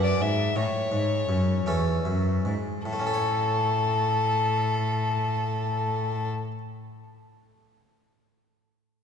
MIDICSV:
0, 0, Header, 1, 4, 480
1, 0, Start_track
1, 0, Key_signature, 3, "major"
1, 0, Tempo, 720288
1, 371, Time_signature, 6, 3, 24, 8
1, 859, Tempo, 761421
1, 1339, Tempo, 805369
1, 5502, End_track
2, 0, Start_track
2, 0, Title_t, "Violin"
2, 0, Program_c, 0, 40
2, 27, Note_on_c, 0, 74, 58
2, 142, Note_on_c, 0, 76, 64
2, 152, Note_off_c, 0, 74, 0
2, 375, Note_on_c, 0, 73, 61
2, 385, Note_off_c, 0, 76, 0
2, 1098, Note_off_c, 0, 73, 0
2, 1821, Note_on_c, 0, 69, 65
2, 3875, Note_off_c, 0, 69, 0
2, 5502, End_track
3, 0, Start_track
3, 0, Title_t, "Harpsichord"
3, 0, Program_c, 1, 6
3, 0, Note_on_c, 1, 42, 42
3, 0, Note_on_c, 1, 62, 36
3, 0, Note_on_c, 1, 68, 34
3, 115, Note_off_c, 1, 42, 0
3, 136, Note_on_c, 1, 44, 42
3, 346, Note_off_c, 1, 62, 0
3, 348, Note_off_c, 1, 68, 0
3, 349, Note_off_c, 1, 44, 0
3, 373, Note_on_c, 1, 45, 42
3, 590, Note_off_c, 1, 45, 0
3, 611, Note_on_c, 1, 44, 43
3, 834, Note_off_c, 1, 44, 0
3, 858, Note_on_c, 1, 42, 35
3, 1072, Note_off_c, 1, 42, 0
3, 1095, Note_on_c, 1, 57, 34
3, 1099, Note_on_c, 1, 40, 38
3, 1101, Note_on_c, 1, 61, 33
3, 1103, Note_on_c, 1, 69, 36
3, 1317, Note_off_c, 1, 40, 0
3, 1341, Note_on_c, 1, 42, 37
3, 1555, Note_off_c, 1, 42, 0
3, 1579, Note_on_c, 1, 44, 41
3, 1620, Note_off_c, 1, 57, 0
3, 1624, Note_off_c, 1, 61, 0
3, 1625, Note_off_c, 1, 69, 0
3, 1796, Note_off_c, 1, 44, 0
3, 1819, Note_on_c, 1, 45, 44
3, 1863, Note_on_c, 1, 57, 45
3, 1903, Note_on_c, 1, 61, 45
3, 1946, Note_on_c, 1, 69, 44
3, 1987, Note_on_c, 1, 73, 45
3, 3873, Note_off_c, 1, 45, 0
3, 3917, Note_off_c, 1, 57, 0
3, 3957, Note_off_c, 1, 61, 0
3, 4000, Note_off_c, 1, 69, 0
3, 4041, Note_off_c, 1, 73, 0
3, 5502, End_track
4, 0, Start_track
4, 0, Title_t, "Cello"
4, 0, Program_c, 2, 42
4, 0, Note_on_c, 2, 42, 51
4, 133, Note_off_c, 2, 42, 0
4, 140, Note_on_c, 2, 44, 50
4, 368, Note_off_c, 2, 44, 0
4, 372, Note_on_c, 2, 45, 54
4, 425, Note_off_c, 2, 45, 0
4, 612, Note_on_c, 2, 44, 50
4, 854, Note_off_c, 2, 44, 0
4, 857, Note_on_c, 2, 42, 44
4, 1088, Note_off_c, 2, 42, 0
4, 1092, Note_on_c, 2, 40, 48
4, 1332, Note_off_c, 2, 40, 0
4, 1337, Note_on_c, 2, 42, 49
4, 1572, Note_off_c, 2, 42, 0
4, 1578, Note_on_c, 2, 44, 46
4, 1626, Note_off_c, 2, 44, 0
4, 1815, Note_on_c, 2, 45, 52
4, 3869, Note_off_c, 2, 45, 0
4, 5502, End_track
0, 0, End_of_file